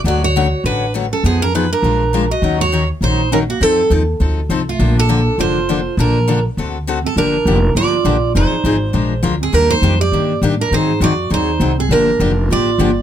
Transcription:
X:1
M:4/4
L:1/8
Q:"Swing" 1/4=203
K:Bb
V:1 name="Steel-string acoustic guitar"
d ^c3 _c2 z A | _A B _c B4 e- | e _d2 z c2 B _G | A2 z4 z F- |
F A3 c4 | B3 z4 A | B4 d4 | c6 z _A |
B c2 d3 z B | c2 d2 c3 _A | B4 d4 |]
V:2 name="Clarinet"
^F F3 D2 z ^C | _C _D E =D4 _G- | _G G2 z E2 _D B, | C2 z4 z A,- |
A, D3 F4 | D3 z4 C | D4 F4 | E4 z3 C |
D E2 G3 z D | E2 _G2 E3 C | D4 F4 |]
V:3 name="Steel-string acoustic guitar"
[D,^F,A,^C^F] z [D,F,A,CF] z [D,F,A,CF] z [D,F,A,CF] z | [F,_CE_A] z [F,CEA] z [F,_A,DFB] z [F,A,DFB] z | [E,_G,_DEB] z [E,G,DEB] z [E,G,DEB] z [E,G,DEB] z | [F,CEA] z [F,CEA] z [F,CEA] z [F,CEA] z |
[D,F,B,DA] z [D,F,B,DA] z [D,F,B,DA] z [D,F,B,DA] z | [D,F,B,DA] z [D,F,B,DA] z [D,A,C^FA] z [D,A,CFA] z | [D,F,B,DG] z [D,F,B,DG] z [D,F,B,DG] z [D,F,B,DG] z | [F,CE_A] z [F,CEA] z [F,_A,DFB] z [F,A,DFB] z |
[E,G,B,DG] z [E,G,B,DG] z [E,G,B,DG] z [E,G,B,DG] z | [E,_G,CE_A] z [E,G,CEA] z [E,G,CEA] z [E,G,CEA] z | [D,F,B,DG] z [D,F,B,DG] z [D,F,B,DG] z [D,F,B,DG] z |]
V:4 name="Upright bass" clef=bass
D,,4 A,,,4 | F,,4 B,,,4 | E,,4 B,,,4 | F,,2 E,,2 D,,2 C,,2 |
B,,,4 F,,,4 | B,,,4 D,,4 | G,,,2 F,,,2 G,,,2 B,,,2 | F,,, z _A,,,2 B,,,2 D,,2 |
E,,2 F,,2 G,,2 A,,2 | _A,,2 F,,2 E,,2 C,,2 | G,,,2 F,,,2 A,,,2 G,,,2 |]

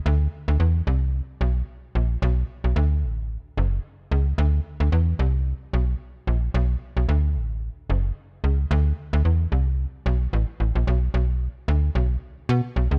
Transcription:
X:1
M:4/4
L:1/16
Q:"Swing 16ths" 1/4=111
K:Dlyd
V:1 name="FM bass" clef=bass
D,,2 z D,, E,,2 =C,,3 z B,,,2 z2 ^A,,,2 | B,,,2 z B,,, D,,2 A,,,3 z F,,,2 z2 C,,2 | D,,2 z D,, E,,2 =C,,3 z B,,,2 z2 ^A,,,2 | B,,,2 z B,,, D,,2 A,,,3 z F,,,2 z2 C,,2 |
D,,2 z D,, E,,2 =C,,3 z B,,,2 A,,, z A,,, ^A,,, | B,,,2 B,,,3 z D,,2 B,,,2 z2 B,, z B,,, C,, |]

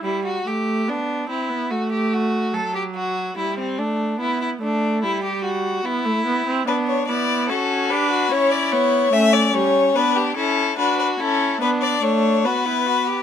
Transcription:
X:1
M:4/4
L:1/16
Q:1/4=72
K:Em
V:1 name="Violin"
z16 | z16 | B ^c d2 A2 B2 c d c2 e d c2 | B G A2 B B A2 B d ^c2 B4 |]
V:2 name="Violin"
E F G2 D2 E2 F G F2 A G F2 | E C D2 E E D2 E G F2 E4 | D2 E2 F2 G F E4 ^C4 | D2 E2 F2 E2 D4 F E F G |]
V:3 name="Viola"
G,2 A,2 B,2 C B, A,4 F,4 | G,2 A,2 B,2 A,2 G,4 B, A, B, C | B,2 B,2 ^C2 D2 C2 B,2 A,2 G,2 | B,2 ^C2 D2 C2 B,2 A,2 B,4 |]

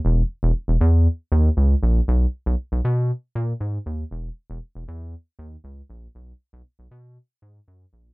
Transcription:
X:1
M:4/4
L:1/16
Q:1/4=118
K:B
V:1 name="Analog synth bass" clef=bass
E,,,2 z E,,, z E,,, E,,3 z D,,2 C,,2 A,,,2 | B,,,2 z B,,, z B,,, B,,3 z A,,2 G,,2 D,,2 | E,,,2 z E,,, z E,,, E,,3 z D,,2 C,,2 A,,,2 | B,,,2 z B,,, z B,,, B,,3 z G,,2 F,,2 A,,,2 |]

